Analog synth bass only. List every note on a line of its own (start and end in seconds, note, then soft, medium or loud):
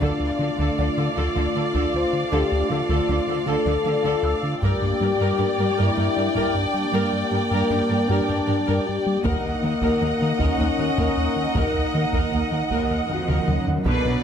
0.00 0.12 D2 medium
0.20 0.32 D2 medium
0.39 0.51 D3 medium
0.59 0.71 D2 medium
0.78 0.90 D2 soft
0.98 1.09 D3 soft
1.17 1.29 D2 medium
1.36 1.48 D2 soft
1.56 1.68 D3 medium
1.75 1.86 D2 medium
1.94 2.06 D2 medium
2.13 2.25 D3 medium
2.32 2.44 D2 medium
2.52 2.63 D2 medium
2.71 2.82 D3 medium
2.89 3.01 D2 medium
3.09 3.21 D2 soft
3.27 3.39 D3 soft
3.46 3.58 D2 medium
3.66 3.78 D2 medium
3.84 3.96 D3 medium
4.04 4.16 D2 medium
4.23 4.35 D2 medium
4.43 4.55 D3 medium
4.63 4.75 G2 medium
4.82 4.94 G2 medium
5.01 5.13 G3 medium
5.21 5.33 G2 medium
5.40 5.52 G2 medium
5.60 5.71 G3 medium
5.80 5.91 G2 medium
5.98 6.09 G2 medium
6.17 6.28 G3 medium
6.35 6.47 G2 medium
6.55 6.66 G2 medium
6.74 6.86 G3 medium
6.93 7.05 G2 medium
7.13 7.24 G2 medium
7.32 7.43 G3 medium
7.51 7.63 G2 medium
7.70 7.82 G2 medium
7.90 8.02 G3 medium
8.10 8.21 G2 medium
8.30 8.41 G2 medium
8.49 8.60 G3 medium
8.69 8.80 G2 medium
8.88 8.99 G2 medium
9.06 9.18 G3 medium
9.26 9.37 D#2 medium
9.45 9.56 D#2 medium
9.64 9.75 D#3 medium
9.83 9.94 D#2 medium
10.02 10.14 D#2 soft
10.22 10.33 D#3 medium
10.42 10.53 D#2 medium
10.61 10.72 D#2 medium
10.80 10.91 D#3 medium
10.98 11.10 D#2 medium
11.17 11.29 D#2 medium
11.36 11.48 D#3 medium
11.56 11.67 D#2 medium
11.74 11.86 D#2 medium
11.94 12.06 D#3 medium
12.13 12.25 D#2 medium
12.32 12.44 D#2 medium
12.52 12.63 D#3 soft
12.71 12.83 D#2 medium
12.91 13.02 D#2 soft
13.10 13.21 D#3 medium
13.30 13.41 D#2 medium
13.48 13.60 D#2 medium
13.67 13.79 D#3 medium
13.86 13.97 B2 medium
14.05 14.17 B2 medium